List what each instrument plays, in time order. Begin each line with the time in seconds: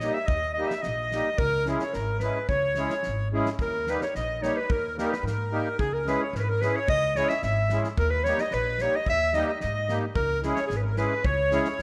Already playing: accordion D#5
0.00 accordion G3 A#3 D#4 G4, clarinet D#5, snare
0.14 clarinet E5, accordion E5
0.26 upright bass D#2, clarinet D#5, accordion D#5, kick
0.54 accordion G3 A#3 D#5, clarinet D#5
0.58 accordion D#4 G4
0.67 clarinet E5, accordion E5, snare
0.82 clarinet D#5, accordion D#5, snare
0.86 upright bass A#1
1.12 accordion G3 A#3 D#4 G4, snare
1.38 upright bass C#2, clarinet A#4, accordion A#4, kick
1.66 accordion G#3 C#4 E4 G#4, snare
1.79 accordion C#5, clarinet C#5, snare
1.93 upright bass G#1, clarinet A#4, accordion A#4, snare
2.19 accordion G#3 C#4 E4 B4, clarinet B4, snare
2.23 accordion G#4
2.48 upright bass C#2, clarinet C#5, accordion C#5, kick
2.75 accordion G#3 C#4 E4 G#4, snare
2.90 snare
3.03 snare
3.07 upright bass G#1
3.32 accordion G#3 C#4 E4 G#4
3.46 snare
3.59 upright bass D#2, accordion A#4, clarinet A#4, kick
3.87 accordion G3 A#3 D#4 G4 B4, clarinet B4, snare
4.01 accordion C#5, clarinet C#5, snare
4.15 upright bass A#1, clarinet D#5, accordion D#5, snare
4.41 accordion G3 A#3 D#4 G4 C#5, clarinet C#5, snare
4.57 clarinet B4, accordion B4
4.69 upright bass D#2, accordion A#4, clarinet A#4, kick
4.97 accordion G3 A#3 D#4 G4 A#4, clarinet A#4, snare
5.12 accordion B4, clarinet B4, snare
5.23 upright bass G#2, clarinet A#4, accordion A#4, snare
5.51 accordion G3 A#3 D#4 G4
5.79 upright bass C#2, accordion G#4, clarinet G#4, kick
5.94 clarinet A#4, accordion A#4
6.05 accordion G#3 C#4 E4 G#4 B4, clarinet B4, snare
6.22 accordion C#5, clarinet C#5
6.33 upright bass G#1, clarinet A#4, accordion A#4, snare
6.40 clarinet B4, accordion B4
6.49 clarinet A#4, accordion A#4
6.62 accordion G#3 C#4 E4 G#4 B4, clarinet B4, snare
6.75 accordion C#5, clarinet C#5
6.88 upright bass C#2, accordion D#5, clarinet D#5, kick
7.15 accordion G#3 C#4 E4 G#4 C#5, clarinet C#5, snare
7.29 clarinet E5, accordion E5, snare
7.42 upright bass G#1, clarinet E5, accordion E5, snare
7.69 accordion G#3 C#4 E4 G#4, snare
7.84 snare
7.98 upright bass D#2, accordion A#4, clarinet A#4, kick
8.11 clarinet B4, accordion B4
8.24 accordion G3 A#3 D#4 G4 C#5, clarinet C#5, snare
8.38 clarinet D#5, accordion D#5, snare
8.51 upright bass A#1, accordion B4, clarinet B4, snare
8.78 accordion G3 A#3 D#4 G4 C#5, clarinet C#5, snare
8.93 accordion D#5, clarinet D#5
9.05 accordion E5, clarinet E5, kick
9.09 upright bass D#2
9.33 accordion G3 A#3 D#4 G4 D#5, clarinet D#5, snare
9.47 accordion D#5, clarinet D#5
9.60 upright bass G#2, accordion D#5, clarinet D#5, snare
9.88 accordion G3 A#3 D#4 G4, snare
10.15 upright bass C#2, accordion A#4, clarinet A#4, kick
10.43 accordion G#3 C#4 E4 G#4, snare
10.55 clarinet C#5, accordion C#5, snare
10.67 upright bass G#1, clarinet G#4, accordion G#4, snare
10.77 clarinet B4, accordion B4
10.82 clarinet A#4, accordion A#4
10.96 accordion G#3 C#4 E4 G#4 B4, clarinet B4, snare
11.24 upright bass C#2, accordion C#5, clarinet C#5, kick
11.51 accordion G#3 C#4 E4 G#4, snare
11.65 snare
11.79 upright bass G#1, snare